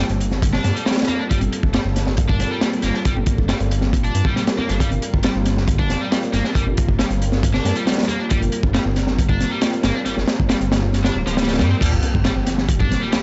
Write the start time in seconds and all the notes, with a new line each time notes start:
Already playing: G3 A#3 F4 A4
0.09 G1, closed hi-hat
0.20 closed hi-hat
0.31 snare, high conga
0.42 kick, closed hi-hat
0.53 D4, snare
0.64 G2, snare, closed hi-hat, high conga
0.75 G3, closed hi-hat
0.86 G3, snare, closed hi-hat
0.91 snare, closed hi-hat
0.97 snare, closed hi-hat
1.03 snare, closed hi-hat
1.08 A#3, closed hi-hat, high conga
1.19 D4
1.30 G1 G3, kick, closed hi-hat
1.41 G1, closed hi-hat, high conga
1.52 closed hi-hat
1.63 G1, kick
1.73 G3, snare, closed hi-hat, high conga
1.85 G1
1.96 snare, closed hi-hat
2.06 snare, high conga
2.17 kick, closed hi-hat
2.29 D4, kick
2.39 snare, closed hi-hat, high conga
2.51 G3
2.61 G3, snare, closed hi-hat
2.73 closed hi-hat
2.82 G1 A#3, snare, closed hi-hat, high conga
2.94 D4, snare
3.05 G1 G3, kick, closed hi-hat
3.17 G1, high conga
3.26 kick, closed hi-hat
3.38 G1, kick
3.48 G3, snare, closed hi-hat, high conga
3.60 G1, closed hi-hat
3.71 closed hi-hat
3.81 snare, high conga
3.93 kick, closed hi-hat
4.04 D4, closed hi-hat
4.14 G2, closed hi-hat, high conga
4.25 G3, kick
4.36 G3, snare, closed hi-hat
4.47 snare, closed hi-hat
4.58 A#3, high conga, low conga
4.69 G1 D4, snare, closed hi-hat
4.80 G1 G3 A#4, kick, closed hi-hat
4.91 G1, closed hi-hat, high conga
5.02 closed hi-hat
5.14 G1, kick
5.23 G3, snare, closed hi-hat, high conga
5.35 G1
5.46 snare, closed hi-hat
5.57 snare, high conga
5.68 kick, closed hi-hat
5.79 D4, kick
5.90 snare, closed hi-hat, high conga
6.01 G3
6.12 G3, snare, closed hi-hat
6.23 closed hi-hat
6.33 G1 A#3, snare, closed hi-hat, high conga
6.44 D4, snare
6.55 G1 G3, kick, closed hi-hat
6.66 G1, high conga
6.77 kick, closed hi-hat
6.89 G1, kick
6.99 G3, snare, closed hi-hat, high conga
7.10 G1, closed hi-hat
7.22 closed hi-hat
7.32 snare, high conga
7.43 kick, closed hi-hat
7.54 D4, snare
7.65 G2, snare, closed hi-hat, high conga
7.75 G3, closed hi-hat
7.87 G3, snare, closed hi-hat
7.92 snare, closed hi-hat
7.98 snare, closed hi-hat
8.03 snare, closed hi-hat
8.09 A#3, closed hi-hat, high conga
8.20 D4
8.30 G1 G3, kick, closed hi-hat
8.42 G1, closed hi-hat, high conga
8.52 closed hi-hat
8.63 G1, kick
8.74 G3, snare, closed hi-hat, high conga
8.86 G1
8.96 snare, closed hi-hat
9.07 snare, high conga
9.19 kick, closed hi-hat
9.29 D4, kick
9.40 snare, closed hi-hat, high conga
9.51 G3
9.61 G3, snare, closed hi-hat
9.73 closed hi-hat
9.83 G1 A#3, snare, closed hi-hat, high conga
9.95 D4
10.06 G1 G3, snare, closed hi-hat
10.17 G1, snare, high conga
10.28 snare, closed hi-hat
10.40 G1, kick
10.49 G3, snare, closed hi-hat, high conga
10.61 G1, closed hi-hat
10.72 snare, closed hi-hat
10.83 high conga
10.93 snare, closed hi-hat
11.04 D4, snare, closed hi-hat
11.15 D1, high conga
11.26 D1 F3, snare, closed hi-hat
11.37 G3, snare, closed hi-hat
11.43 snare, closed hi-hat
11.48 G3, snare, closed hi-hat
11.54 snare, closed hi-hat
11.59 G2 G3, snare, closed hi-hat, high conga, low conga
11.70 C4
11.81 G1 F3 G3 A#3 G4, kick, closed hi-hat, crash, sub drop
11.92 G1, closed hi-hat
12.03 closed hi-hat, high conga
12.14 G1, kick, low conga
12.25 G3, snare, closed hi-hat
12.36 G1
12.47 snare, closed hi-hat, high conga
12.58 snare
12.69 kick, closed hi-hat
12.80 D4, kick, high conga, low conga
12.90 snare, closed hi-hat, low conga
13.02 G3
13.12 G3, snare, closed hi-hat, high conga